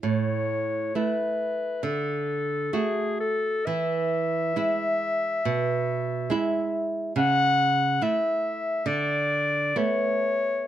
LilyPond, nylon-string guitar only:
\new Staff \with { instrumentName = "Nylon-string guitar" } { \time 4/4 \key a \major \tempo 4 = 68 a,4 <a e'>4 d4 <a fis'>4 | e4 <gis e'>4 b,4 <gis e'>4 | cis4 <a e'>4 d4 <a b>4 | }